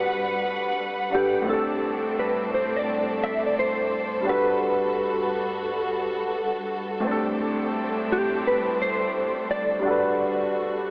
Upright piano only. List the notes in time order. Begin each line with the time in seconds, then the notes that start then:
Already playing: G3 D4 F#4 A4 B4
1.10 G3 D4 F#5
1.14 A4 B4
1.42 A2 A3
1.46 C4 D4
1.51 G4 A4
4.21 G3 D4
4.27 F#4 A4
4.33 B4
7.00 A2 A3
7.05 C4 D4
7.09 G4 A4
9.79 G3 D4
9.85 F#4 A4
9.90 B4